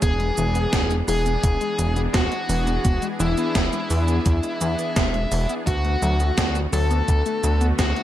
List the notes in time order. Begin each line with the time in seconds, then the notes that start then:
0.02 E1 E3 B3 D4 G#4, kick, closed hi-hat, shaker
0.20 G#3, closed hi-hat
0.37 E1 E3, shaker
0.55 B3, closed hi-hat, shaker
0.73 E1 B3, kick, snare, closed hi-hat, shaker
0.90 G#3, closed hi-hat, shaker
1.08 E1 E3 G#4, open hi-hat, shaker
1.26 B3, closed hi-hat, shaker
1.43 E1 B3, kick, closed hi-hat, shaker
1.61 G#3, closed hi-hat, shaker
1.79 E1 E3, closed hi-hat, shaker
1.96 B3, closed hi-hat, shaker
2.14 E1 B3 F#4, kick, snare, closed hi-hat, shaker
2.31 G#3, closed hi-hat
2.49 E1 E3, open hi-hat, shaker
2.67 B3, closed hi-hat, shaker
2.85 E1 B3, kick, closed hi-hat, shaker
3.02 G#3, closed hi-hat, shaker
3.20 E1 E3 E4, shaker
3.37 B3, closed hi-hat, shaker
3.55 E1 B3, kick, snare, closed hi-hat, shaker
3.73 G#3, closed hi-hat, shaker
3.90 E2 E3, open hi-hat, shaker
4.08 B3, closed hi-hat, shaker
4.26 E2 B3, kick, closed hi-hat, shaker
4.43 G#3, closed hi-hat, shaker
4.61 E2 E3, closed hi-hat, shaker
4.79 B3, closed hi-hat, shaker
4.96 E1 B3, kick, snare, closed hi-hat, shaker
5.14 G#3, closed hi-hat
5.32 E1 E3, open hi-hat, shaker
5.49 B3, closed hi-hat, shaker
5.67 D2 D3 A3 B3 F#4, kick, closed hi-hat, shaker
5.85 A3, closed hi-hat
6.02 D2 F#3, shaker
6.20 B3, closed hi-hat, shaker
6.38 D2 B3, kick, snare, closed hi-hat, shaker
6.55 A3, closed hi-hat, shaker
6.73 D2 F#3 A4, open hi-hat, shaker
6.91 B3, closed hi-hat, shaker
7.08 D2 B3, kick, closed hi-hat, shaker
7.26 A3, closed hi-hat, shaker
7.44 D2 F#3, closed hi-hat, shaker
7.61 B3, closed hi-hat, shaker
7.79 D2 B3 F#4, kick, snare, closed hi-hat, shaker
7.96 A3, closed hi-hat